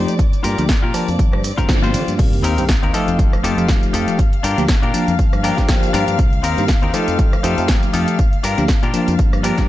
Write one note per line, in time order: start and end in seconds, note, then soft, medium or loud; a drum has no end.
0.00 0.18 F3 medium
0.00 0.18 A3 medium
0.00 0.13 D#4 medium
0.00 0.18 D#4 medium
0.00 0.14 G4 medium
0.00 0.18 G4 medium
0.00 0.14 C5 medium
0.00 2.20 D5 medium
0.00 2.20 D6 medium
0.08 closed hi-hat medium
0.08 tambourine soft
0.08 tambourine medium
0.19 kick loud
0.19 closed hi-hat medium
0.19 tambourine soft
0.33 muted fingered electric bass stroke soft
0.33 closed hi-hat soft
0.33 tambourine soft
0.43 0.54 G2 medium
0.43 0.63 F4 loud
0.43 0.64 G4 loud
0.43 0.64 A#4 loud
0.43 open hi-hat loud
0.43 tambourine loud
0.43 tambourine medium
0.43 high conga medium
0.58 0.66 D2 medium
0.58 0.66 F3 loud
0.58 0.66 A#3 medium
0.58 0.66 D4 medium
0.58 0.67 G4 loud
0.58 closed hi-hat medium
0.58 tambourine medium
0.58 tambourine soft
0.69 kick loud
0.69 snare loud
0.69 closed hi-hat medium
0.69 tambourine soft
0.82 0.91 A#2 medium
0.82 1.08 F4 medium
0.82 1.08 G4 medium
0.82 1.08 A#4 medium
0.94 1.41 F3 medium
0.94 1.41 A#3 medium
0.94 1.42 D4 medium
0.94 1.42 A5 loud
0.94 muted fingered electric bass stroke soft
0.94 cross-stick medium
0.94 open hi-hat loud
0.94 tambourine loud
0.94 tambourine medium
1.08 1.16 F2 medium
1.08 open hi-hat medium
1.08 tambourine medium
1.08 tambourine soft
1.08 high conga medium
1.19 kick loud
1.19 closed hi-hat medium
1.19 tambourine soft
1.19 swell medium
1.19 low conga medium
1.33 1.50 G2 medium
1.33 muted clean electric guitar stroke soft
1.33 cross-stick medium
1.44 cross-stick medium
1.44 open hi-hat loud
1.44 tambourine loud
1.44 tambourine medium
1.57 1.96 G1 loud
1.57 2.17 F3 medium
1.57 2.18 A#3 medium
1.57 2.18 D4 medium
1.57 1.69 F4 loud
1.57 2.18 F4 medium
1.57 1.69 G4 loud
1.57 1.69 A#4 loud
1.57 kick medium
1.57 closed hi-hat medium
1.57 tambourine medium
1.57 tambourine soft
1.69 kick loud
1.69 snare loud
1.69 closed hi-hat soft
1.69 tambourine soft
1.82 2.13 F4 medium
1.82 2.14 G4 medium
1.82 2.14 C5 loud
1.82 tambourine soft
1.82 high conga medium
1.94 2.04 D3 medium
1.94 open hi-hat loud
1.94 tambourine loud
1.94 tambourine medium
1.94 low conga medium
2.08 2.16 G2 medium
2.08 closed hi-hat medium
2.08 tambourine soft
2.08 tambourine medium
2.19 2.44 C2 medium
2.19 2.52 D#3 loud
2.19 2.52 A#3 medium
2.19 2.52 C4 medium
2.19 2.53 G4 loud
2.19 9.69 F5 medium
2.19 9.69 F6 medium
2.19 kick loud
2.19 closed hi-hat medium
2.19 crash loud
2.19 tambourine soft
2.19 sub drop medium
2.33 closed hi-hat soft
2.43 2.54 D#2 medium
2.43 2.63 C4 loud
2.43 2.63 D#4 medium
2.43 2.64 G4 loud
2.43 2.64 A#4 loud
2.43 open hi-hat loud
2.43 tambourine medium
2.58 2.66 G2 medium
2.58 2.66 D#3 loud
2.58 2.66 A#3 medium
2.58 2.66 C4 medium
2.58 2.67 G4 loud
2.58 closed hi-hat medium
2.58 tambourine soft
2.69 kick loud
2.69 snare loud
2.69 closed hi-hat medium
2.69 tambourine soft
2.82 2.91 D#2 medium
2.82 2.94 C4 medium
2.82 2.92 D#4 medium
2.82 2.93 G4 medium
2.82 2.94 A#4 medium
2.82 closed hi-hat soft
2.93 3.41 F3 medium
2.93 3.41 A3 medium
2.93 3.35 D#4 medium
2.93 3.41 D#4 medium
2.93 3.35 F4 medium
2.93 3.35 G4 medium
2.93 3.41 A4 loud
2.93 3.36 A4 loud
2.93 cross-stick medium
2.93 open hi-hat medium
2.93 tambourine medium
3.08 3.16 F2 medium
3.08 closed hi-hat medium
3.08 tambourine soft
3.19 kick loud
3.19 closed hi-hat medium
3.19 tambourine soft
3.33 muted fingered electric bass stroke soft
3.33 cross-stick medium
3.33 tambourine soft
3.43 3.54 F2 loud
3.43 3.54 F3 medium
3.43 3.54 A3 medium
3.43 3.69 D#4 loud
3.43 3.55 D#4 medium
3.43 3.69 F4 loud
3.43 3.55 G4 loud
3.43 3.69 G4 medium
3.43 3.69 A4 loud
3.43 cross-stick medium
3.43 open hi-hat loud
3.43 tambourine medium
3.57 3.66 F2 medium
3.57 3.66 F3 medium
3.57 3.66 A3 medium
3.57 3.66 D#4 medium
3.57 3.66 G4 loud
3.57 closed hi-hat medium
3.57 tambourine soft
3.68 kick loud
3.68 snare loud
3.68 closed hi-hat medium
3.68 tambourine soft
3.83 closed hi-hat soft
3.83 tambourine soft
3.93 4.04 F2 medium
3.93 4.19 D#4 medium
3.93 4.19 F4 medium
3.93 4.19 G4 medium
3.93 4.19 A4 loud
3.93 open hi-hat loud
3.93 tambourine medium
4.08 closed hi-hat medium
4.08 tambourine soft
4.19 kick loud
4.19 closed hi-hat medium
4.19 tambourine soft
4.33 muted fingered electric bass stroke soft
4.33 closed hi-hat soft
4.43 4.54 G2 medium
4.43 4.63 D4 loud
4.43 4.63 F4 medium
4.43 4.64 G4 loud
4.43 4.64 A#4 loud
4.43 open hi-hat loud
4.43 tambourine medium
4.57 4.66 D2 medium
4.57 4.66 F3 loud
4.57 4.66 A#3 medium
4.57 4.66 D4 medium
4.57 4.66 G4 loud
4.57 closed hi-hat medium
4.57 tambourine soft
4.68 kick loud
4.68 snare loud
4.68 closed hi-hat medium
4.68 tambourine soft
4.82 4.91 A#2 medium
4.82 5.13 D4 medium
4.82 5.13 F4 medium
4.82 5.14 G4 medium
4.82 5.14 A#4 medium
4.82 closed hi-hat soft
4.93 5.41 F3 medium
4.93 5.41 A#3 medium
4.93 5.41 D4 medium
4.93 5.41 A5 loud
4.93 muted fingered electric bass stroke soft
4.93 open hi-hat loud
4.93 tambourine medium
5.08 5.16 F2 medium
5.08 closed hi-hat medium
5.08 tambourine soft
5.19 kick loud
5.19 closed hi-hat medium
5.19 tambourine soft
5.33 5.50 G2 medium
5.33 cross-stick medium
5.33 tambourine soft
5.43 5.54 F3 loud
5.43 5.54 A#3 medium
5.43 5.69 D4 loud
5.43 5.55 D4 medium
5.43 5.69 F4 loud
5.43 5.55 G4 loud
5.43 5.69 G4 medium
5.43 5.69 A#4 loud
5.43 cross-stick medium
5.43 open hi-hat loud
5.43 tambourine medium
5.57 5.66 G2 loud
5.57 5.66 F3 medium
5.57 5.66 A#3 medium
5.57 5.66 D4 medium
5.57 5.66 G4 loud
5.57 kick medium
5.57 snare soft
5.57 closed hi-hat medium
5.57 tambourine soft
5.68 6.17 F3 medium
5.68 6.17 A#3 medium
5.68 6.18 D4 medium
5.68 6.18 G4 medium
5.68 kick loud
5.68 snare loud
5.68 closed hi-hat medium
5.68 tambourine soft
5.83 closed hi-hat soft
5.83 tambourine soft
5.93 6.04 G2 loud
5.93 6.19 D4 medium
5.93 6.19 F4 medium
5.93 6.19 G4 medium
5.93 6.19 A#4 medium
5.93 open hi-hat loud
5.93 tambourine medium
6.08 6.16 G2 medium
6.08 closed hi-hat medium
6.08 tambourine soft
6.19 6.44 C2 loud
6.19 kick loud
6.19 closed hi-hat medium
6.19 tambourine soft
6.33 closed hi-hat soft
6.43 6.54 D#2 medium
6.43 6.63 C4 loud
6.43 6.63 D#4 medium
6.43 6.63 G4 loud
6.43 6.64 A#4 loud
6.43 open hi-hat loud
6.43 tambourine medium
6.57 6.66 G2 medium
6.57 6.66 D#3 loud
6.57 6.66 A#3 medium
6.57 6.66 C4 medium
6.57 6.66 G4 loud
6.57 closed hi-hat medium
6.57 tambourine soft
6.68 kick loud
6.68 snare loud
6.68 closed hi-hat medium
6.68 tambourine soft
6.82 6.91 D#2 medium
6.82 6.94 C4 medium
6.82 6.92 D#4 medium
6.82 6.93 G4 medium
6.82 6.94 A#4 loud
6.82 closed hi-hat soft
6.93 7.41 F3 medium
6.93 7.41 A3 medium
6.93 7.35 D#4 medium
6.93 7.41 D#4 medium
6.93 7.35 F4 medium
6.93 7.35 G4 medium
6.93 7.41 A4 loud
6.93 7.36 A4 medium
6.93 muted fingered electric bass stroke soft
6.93 cross-stick medium
6.93 open hi-hat loud
6.93 tambourine medium
7.08 7.16 F2 medium
7.08 closed hi-hat medium
7.08 tambourine soft
7.19 kick loud
7.19 closed hi-hat medium
7.19 tambourine soft
7.33 muted fingered electric bass stroke soft
7.33 cross-stick medium
7.33 tambourine soft
7.43 7.54 F2 loud
7.43 7.54 F3 loud
7.43 7.55 A3 medium
7.43 7.69 D#4 loud
7.43 7.55 D#4 medium
7.43 7.69 F4 medium
7.43 7.69 G4 loud
7.43 7.55 G4 loud
7.43 7.69 A4 loud
7.43 cross-stick medium
7.43 open hi-hat loud
7.43 tambourine medium
7.58 7.66 F2 medium
7.58 7.66 F3 medium
7.58 7.66 A3 medium
7.58 7.66 D#4 medium
7.58 7.66 G4 loud
7.58 closed hi-hat medium
7.58 tambourine soft
7.68 8.17 F3 medium
7.68 kick loud
7.68 snare loud
7.68 closed hi-hat medium
7.68 tambourine soft
7.83 closed hi-hat soft
7.83 tambourine soft
7.93 8.04 F2 medium
7.93 8.19 D#4 medium
7.93 8.19 F4 medium
7.93 8.19 G4 medium
7.93 8.19 A4 loud
7.93 open hi-hat loud
7.93 tambourine medium
8.08 closed hi-hat medium
8.08 tambourine soft
8.19 kick loud
8.19 closed hi-hat medium
8.19 tambourine soft
8.33 muted fingered electric bass stroke soft
8.33 closed hi-hat soft
8.43 8.54 G2 medium
8.43 8.63 D4 loud
8.43 8.63 F4 medium
8.43 8.64 G4 loud
8.43 8.64 A#4 loud
8.43 open hi-hat loud
8.43 tambourine medium
8.58 8.66 D2 medium
8.58 8.66 F3 medium
8.58 8.66 A#3 medium
8.58 8.66 D4 medium
8.58 8.66 G4 loud
8.58 closed hi-hat medium
8.58 tambourine soft
8.68 kick loud
8.68 snare loud
8.68 closed hi-hat medium
8.68 tambourine soft
8.83 8.91 A#2 medium
8.83 9.13 D4 medium
8.83 9.14 F4 medium
8.83 9.14 G4 medium
8.83 9.14 A#4 medium
8.83 closed hi-hat soft
8.83 tambourine soft
8.94 9.41 F3 loud
8.94 9.41 A#3 medium
8.94 9.41 D4 medium
8.94 9.42 A5 loud
8.94 muted fingered electric bass stroke soft
8.94 open hi-hat loud
8.94 tambourine medium
9.08 9.16 F2 medium
9.08 closed hi-hat medium
9.08 tambourine soft
9.19 kick loud
9.19 closed hi-hat medium
9.19 tambourine soft
9.33 9.50 G2 medium
9.33 cross-stick medium
9.33 tambourine soft
9.43 9.54 F3 medium
9.43 9.55 A#3 medium
9.43 9.69 D4 loud
9.43 9.55 D4 medium
9.43 9.69 F4 medium
9.43 9.69 G4 loud
9.43 9.55 G4 loud
9.43 9.69 A#4 loud
9.43 cross-stick medium
9.43 open hi-hat loud
9.43 tambourine medium
9.58 9.66 G2 loud
9.58 9.66 F3 medium
9.58 9.66 A#3 medium
9.58 9.66 D4 medium
9.58 9.66 G4 loud
9.58 kick medium
9.58 snare soft
9.58 closed hi-hat soft
9.58 tambourine soft